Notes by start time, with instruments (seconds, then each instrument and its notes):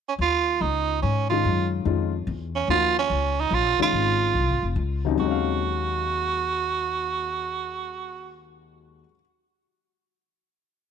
0.09 tenor saxophone C#4
0.19 upright bass D#2, tenor saxophone F4
0.61 upright bass C#2, tenor saxophone D#4
1.02 upright bass G#2, tenor saxophone C#4
1.30 grand piano D#3 G#3 C#4 F4, tenor saxophone F4
1.45 upright bass F#2
1.85 upright bass F2, grand piano D#3 G#3 C#4 F4
2.27 upright bass E2
2.56 tenor saxophone C#4
2.68 upright bass D#2, grand piano F3 A#3 D#4 F#4, tenor saxophone F4
2.99 tenor saxophone C#4
3.10 upright bass C#2
3.40 tenor saxophone D#4
3.51 upright bass A#1, tenor saxophone F4
3.79 grand piano D#3 G#3 C#4 F4, tenor saxophone F4, muted upright bass stroke
3.93 upright bass G#1
4.35 upright bass C2
4.49 upright bass G#1
4.62 upright bass F1
4.76 upright bass C#2
5.05 grand piano D#2 C#3 F#3 C4 D#4
5.11 grand piano D#3
5.15 upright bass D#2, grand piano F#3
5.20 grand piano G#3, tenor saxophone F#4
5.26 grand piano C#4
5.31 grand piano F5